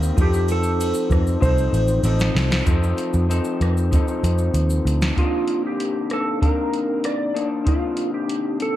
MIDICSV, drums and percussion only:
0, 0, Header, 1, 2, 480
1, 0, Start_track
1, 0, Tempo, 624350
1, 134, Time_signature, 4, 2, 24, 8
1, 6737, End_track
2, 0, Start_track
2, 0, Title_t, "Drums"
2, 21, Note_on_c, 9, 82, 51
2, 98, Note_off_c, 9, 82, 0
2, 136, Note_on_c, 9, 36, 92
2, 139, Note_on_c, 9, 51, 63
2, 139, Note_on_c, 9, 82, 73
2, 213, Note_off_c, 9, 36, 0
2, 216, Note_off_c, 9, 51, 0
2, 216, Note_off_c, 9, 82, 0
2, 258, Note_on_c, 9, 82, 57
2, 335, Note_off_c, 9, 82, 0
2, 372, Note_on_c, 9, 51, 51
2, 372, Note_on_c, 9, 82, 61
2, 449, Note_off_c, 9, 51, 0
2, 449, Note_off_c, 9, 82, 0
2, 487, Note_on_c, 9, 82, 62
2, 564, Note_off_c, 9, 82, 0
2, 621, Note_on_c, 9, 51, 68
2, 621, Note_on_c, 9, 82, 85
2, 698, Note_off_c, 9, 51, 0
2, 698, Note_off_c, 9, 82, 0
2, 724, Note_on_c, 9, 82, 61
2, 801, Note_off_c, 9, 82, 0
2, 849, Note_on_c, 9, 36, 89
2, 854, Note_on_c, 9, 51, 35
2, 854, Note_on_c, 9, 82, 49
2, 863, Note_on_c, 9, 37, 105
2, 926, Note_off_c, 9, 36, 0
2, 930, Note_off_c, 9, 51, 0
2, 930, Note_off_c, 9, 82, 0
2, 939, Note_off_c, 9, 37, 0
2, 976, Note_on_c, 9, 82, 51
2, 1053, Note_off_c, 9, 82, 0
2, 1093, Note_on_c, 9, 36, 97
2, 1099, Note_on_c, 9, 51, 63
2, 1099, Note_on_c, 9, 82, 76
2, 1170, Note_off_c, 9, 36, 0
2, 1176, Note_off_c, 9, 51, 0
2, 1176, Note_off_c, 9, 82, 0
2, 1215, Note_on_c, 9, 82, 53
2, 1291, Note_off_c, 9, 82, 0
2, 1337, Note_on_c, 9, 51, 43
2, 1337, Note_on_c, 9, 82, 56
2, 1414, Note_off_c, 9, 51, 0
2, 1414, Note_off_c, 9, 82, 0
2, 1445, Note_on_c, 9, 82, 58
2, 1522, Note_off_c, 9, 82, 0
2, 1566, Note_on_c, 9, 51, 60
2, 1566, Note_on_c, 9, 82, 77
2, 1643, Note_off_c, 9, 51, 0
2, 1643, Note_off_c, 9, 82, 0
2, 1689, Note_on_c, 9, 82, 58
2, 1700, Note_on_c, 9, 38, 82
2, 1765, Note_off_c, 9, 82, 0
2, 1777, Note_off_c, 9, 38, 0
2, 1818, Note_on_c, 9, 38, 94
2, 1819, Note_on_c, 9, 51, 42
2, 1819, Note_on_c, 9, 82, 52
2, 1895, Note_off_c, 9, 38, 0
2, 1896, Note_off_c, 9, 51, 0
2, 1896, Note_off_c, 9, 82, 0
2, 1934, Note_on_c, 9, 82, 50
2, 1938, Note_on_c, 9, 38, 104
2, 2011, Note_off_c, 9, 82, 0
2, 2015, Note_off_c, 9, 38, 0
2, 2050, Note_on_c, 9, 42, 76
2, 2050, Note_on_c, 9, 82, 79
2, 2052, Note_on_c, 9, 36, 95
2, 2127, Note_off_c, 9, 42, 0
2, 2127, Note_off_c, 9, 82, 0
2, 2129, Note_off_c, 9, 36, 0
2, 2179, Note_on_c, 9, 82, 55
2, 2256, Note_off_c, 9, 82, 0
2, 2291, Note_on_c, 9, 42, 53
2, 2291, Note_on_c, 9, 82, 55
2, 2368, Note_off_c, 9, 42, 0
2, 2368, Note_off_c, 9, 82, 0
2, 2411, Note_on_c, 9, 82, 52
2, 2488, Note_off_c, 9, 82, 0
2, 2544, Note_on_c, 9, 42, 69
2, 2544, Note_on_c, 9, 82, 73
2, 2621, Note_off_c, 9, 42, 0
2, 2621, Note_off_c, 9, 82, 0
2, 2648, Note_on_c, 9, 82, 53
2, 2725, Note_off_c, 9, 82, 0
2, 2777, Note_on_c, 9, 42, 45
2, 2777, Note_on_c, 9, 82, 38
2, 2786, Note_on_c, 9, 37, 92
2, 2854, Note_off_c, 9, 42, 0
2, 2854, Note_off_c, 9, 82, 0
2, 2863, Note_off_c, 9, 37, 0
2, 2901, Note_on_c, 9, 82, 49
2, 2978, Note_off_c, 9, 82, 0
2, 3018, Note_on_c, 9, 36, 92
2, 3020, Note_on_c, 9, 42, 70
2, 3020, Note_on_c, 9, 82, 68
2, 3095, Note_off_c, 9, 36, 0
2, 3097, Note_off_c, 9, 42, 0
2, 3097, Note_off_c, 9, 82, 0
2, 3136, Note_on_c, 9, 82, 46
2, 3213, Note_off_c, 9, 82, 0
2, 3261, Note_on_c, 9, 42, 58
2, 3261, Note_on_c, 9, 82, 53
2, 3338, Note_off_c, 9, 42, 0
2, 3338, Note_off_c, 9, 82, 0
2, 3370, Note_on_c, 9, 82, 50
2, 3447, Note_off_c, 9, 82, 0
2, 3494, Note_on_c, 9, 42, 67
2, 3494, Note_on_c, 9, 82, 64
2, 3571, Note_off_c, 9, 42, 0
2, 3571, Note_off_c, 9, 82, 0
2, 3613, Note_on_c, 9, 82, 52
2, 3690, Note_off_c, 9, 82, 0
2, 3745, Note_on_c, 9, 42, 48
2, 3745, Note_on_c, 9, 82, 49
2, 3822, Note_off_c, 9, 42, 0
2, 3822, Note_off_c, 9, 82, 0
2, 3858, Note_on_c, 9, 82, 46
2, 3861, Note_on_c, 9, 38, 89
2, 3934, Note_off_c, 9, 82, 0
2, 3938, Note_off_c, 9, 38, 0
2, 3975, Note_on_c, 9, 36, 74
2, 3980, Note_on_c, 9, 42, 58
2, 4052, Note_off_c, 9, 36, 0
2, 4057, Note_off_c, 9, 42, 0
2, 4209, Note_on_c, 9, 42, 45
2, 4286, Note_off_c, 9, 42, 0
2, 4460, Note_on_c, 9, 42, 59
2, 4536, Note_off_c, 9, 42, 0
2, 4690, Note_on_c, 9, 42, 36
2, 4699, Note_on_c, 9, 37, 91
2, 4767, Note_off_c, 9, 42, 0
2, 4776, Note_off_c, 9, 37, 0
2, 4936, Note_on_c, 9, 36, 88
2, 4941, Note_on_c, 9, 42, 61
2, 5013, Note_off_c, 9, 36, 0
2, 5017, Note_off_c, 9, 42, 0
2, 5178, Note_on_c, 9, 42, 45
2, 5255, Note_off_c, 9, 42, 0
2, 5412, Note_on_c, 9, 42, 58
2, 5419, Note_on_c, 9, 37, 77
2, 5489, Note_off_c, 9, 42, 0
2, 5496, Note_off_c, 9, 37, 0
2, 5662, Note_on_c, 9, 42, 40
2, 5739, Note_off_c, 9, 42, 0
2, 5893, Note_on_c, 9, 36, 79
2, 5894, Note_on_c, 9, 42, 65
2, 5970, Note_off_c, 9, 36, 0
2, 5971, Note_off_c, 9, 42, 0
2, 6126, Note_on_c, 9, 42, 53
2, 6203, Note_off_c, 9, 42, 0
2, 6377, Note_on_c, 9, 42, 65
2, 6454, Note_off_c, 9, 42, 0
2, 6611, Note_on_c, 9, 42, 40
2, 6688, Note_off_c, 9, 42, 0
2, 6737, End_track
0, 0, End_of_file